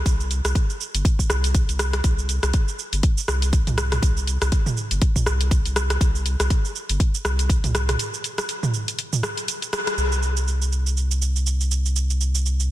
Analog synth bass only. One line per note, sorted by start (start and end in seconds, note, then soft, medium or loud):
0.06 0.41 C2 medium
0.44 0.53 C2 medium
0.94 1.03 G1 medium
1.30 1.65 C2 medium
1.69 2.01 C2 medium
2.04 2.39 C2 medium
2.43 2.52 C2 medium
2.93 3.01 G1 medium
3.28 3.63 C2 medium
3.67 3.99 C2 medium
4.02 4.37 C2 medium
4.42 4.50 C2 medium
4.91 5.00 G1 medium
5.26 5.61 C2 medium
5.66 5.98 C2 medium
6.01 6.36 C2 medium
6.40 6.49 C2 medium
6.90 6.98 G1 medium
7.25 7.60 C2 medium
7.64 7.96 C2 medium
9.97 12.71 C2 medium